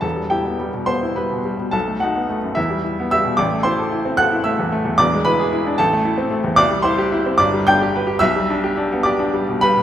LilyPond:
<<
  \new Staff \with { instrumentName = "Upright piano" } { \time 6/8 \key e \minor \tempo 4. = 73 <a' a''>8 <g' g''>4 <c'' c'''>8 <b' b''>4 | <a' a''>8 <fis' fis''>4 <e' e''>4 <e'' e'''>8 | <d'' d'''>8 <c'' c'''>4 <fis'' fis'''>8 <e'' e'''>4 | <d'' d'''>8 <b' b''>4 <a' a''>4 r8 |
\key g \major <d'' d'''>8 <c'' c'''>4 <d'' d'''>8 <g'' g'''>4 | <e'' e'''>4. <d'' d'''>4 <b' b''>8 | }
  \new Staff \with { instrumentName = "Upright piano" } { \time 6/8 \key e \minor <e,, e,>16 g16 e'16 b16 g16 b,16 b16 e'16 g16 b,16 g16 b,16 | b,,16 a16 dis'16 b16 a16 fis,16 e,16 g16 e'16 b16 g16 b,16 | a,,16 a16 e'16 a'16 e'16 c'16 a'16 e'16 a16 e,16 a16 e,16 | <e,, e,>16 gis16 e'16 gis'16 e'16 d'16 a,,16 a16 e'16 c'16 a16 e,16 |
\key g \major c,16 g16 e'16 g'16 e'16 c'16 g,,16 g16 d'16 g'16 b'16 g'16 | b,,16 g16 d'16 g'16 d'16 b16 g'16 d'16 g16 b,16 g16 b,16 | }
>>